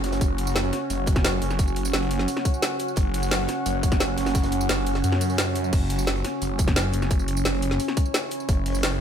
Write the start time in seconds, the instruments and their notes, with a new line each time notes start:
Already playing: detuned saw bass F#1, ambient pad C#4 F#4 C#5
0.04 snare, closed hi-hat
0.12 snare, closed hi-hat, tambourine
0.21 detuned saw bass F#1, ambient pad F#5, kick, closed hi-hat, tambourine
0.38 closed hi-hat, open hi-hat
0.47 tambourine
0.55 snare, closed hi-hat, tambourine
0.63 closed hi-hat
0.73 snare, closed hi-hat
0.90 detuned saw bass F#1, closed hi-hat, tambourine
1.06 kick, closed hi-hat, tambourine
1.16 kick, snare, tambourine
1.24 snare, closed hi-hat, tambourine
1.42 detuned saw bass F#1, closed hi-hat
1.50 snare, tambourine
1.59 kick, closed hi-hat, tambourine
1.68 tambourine
1.76 closed hi-hat
1.85 closed hi-hat, tambourine
1.93 detuned saw bass F#1, snare, closed hi-hat, tambourine
2.02 closed hi-hat
2.11 closed hi-hat
2.19 snare
2.28 closed hi-hat, tambourine
2.37 snare
2.45 kick, closed hi-hat, tambourine
2.54 tambourine
2.62 snare, closed hi-hat, tambourine
2.79 closed hi-hat
2.88 tambourine
2.96 detuned saw bass F#1, kick, closed hi-hat, tambourine
3.14 closed hi-hat, open hi-hat
3.23 tambourine
3.31 snare, closed hi-hat, tambourine
3.40 closed hi-hat
3.48 snare, closed hi-hat
3.66 detuned saw bass F#1, closed hi-hat, tambourine
3.83 kick, closed hi-hat, tambourine
3.92 kick, snare, tambourine
4.00 snare, closed hi-hat, tambourine
4.17 detuned saw bass F#1, snare, closed hi-hat
4.26 snare, closed hi-hat, tambourine
4.35 kick, snare, closed hi-hat, tambourine
4.43 snare, closed hi-hat, tambourine
4.52 closed hi-hat
4.61 closed hi-hat, tambourine
4.69 detuned saw bass F#1, snare, closed hi-hat, tambourine
4.78 closed hi-hat
4.86 closed hi-hat, open hi-hat
4.95 snare
5.04 detuned saw bass F#2, closed hi-hat, tambourine
5.12 snare
5.21 closed hi-hat, open hi-hat, tambourine
5.30 tambourine
5.38 snare, closed hi-hat, tambourine
5.55 closed hi-hat, tambourine
5.64 tambourine
5.73 detuned saw bass F#1, ambient pad E4 C#5, kick, closed hi-hat, crash, tambourine
5.89 closed hi-hat, open hi-hat
5.99 tambourine
6.07 snare, closed hi-hat, tambourine
6.16 closed hi-hat
6.24 snare, closed hi-hat
6.42 detuned saw bass F#1, closed hi-hat, tambourine
6.59 kick, closed hi-hat, tambourine
6.68 kick, snare, tambourine
6.76 snare, closed hi-hat, tambourine
6.93 detuned saw bass F#1, closed hi-hat
7.02 snare, tambourine
7.10 kick, closed hi-hat, tambourine
7.19 tambourine
7.28 closed hi-hat
7.37 closed hi-hat, tambourine
7.45 detuned saw bass F#1, snare, closed hi-hat, tambourine
7.54 closed hi-hat
7.62 closed hi-hat
7.71 snare
7.80 closed hi-hat, tambourine
7.88 snare
7.97 kick, closed hi-hat, tambourine
8.06 tambourine
8.14 snare, closed hi-hat, tambourine
8.31 closed hi-hat
8.40 tambourine
8.49 detuned saw bass F#1, kick, closed hi-hat, tambourine
8.66 closed hi-hat, open hi-hat
8.75 tambourine
8.83 snare, closed hi-hat, tambourine
8.92 closed hi-hat